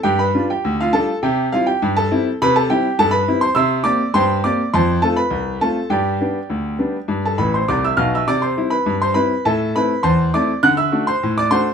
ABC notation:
X:1
M:2/4
L:1/16
Q:1/4=102
K:C
V:1 name="Grand piano"
[Gg] [Bb]2 [Gg]2 [Ff] [Aa]2 | [Geg]2 [Ff] [Gg]2 [Aa]3 | [Bb] [Aa] [Gg]2 [Aa] [Bb]2 [cc'] | [ec'e']2 [dd']2 [cgc']2 [dd']2 |
[cac']2 [Aa] [Bb]3 [Aa]2 | [Gdg]8- | [Gdg] [Aa] [Bb] [cc'] [dd'] [ee'] [ff'] [ee'] | [dd'] [cc']2 [Bb]2 [cc'] [Bb]2 |
[Aea]2 [Bb]2 [cac']2 [dd']2 | [^f^f'] [ee']2 [cc']2 [dd'] [cc']2 |]
V:2 name="Grand piano"
G,,2 [G,DF]2 D,,2 [G,DF]2 | C,2 [G,CE]2 G,,2 [G,CE]2 | C,2 [G,CE]2 G,,2 [G,CE]2 | C,2 [_B,CG]2 G,,2 [B,CG]2 |
F,,2 [A,CF]2 C,,2 [A,CF]2 | G,,2 [G,B,D]2 D,,2 [G,B,D]2 | G,,2 [A,,,A,,]2 [C,,C,]2 [B,,,B,,]2 | C,2 [G,CE]2 G,,2 [G,CE]2 |
A,,2 [A,CE]2 E,,2 [A,CE]2 | D,2 [A,D^F]2 A,,2 [A,DF]2 |]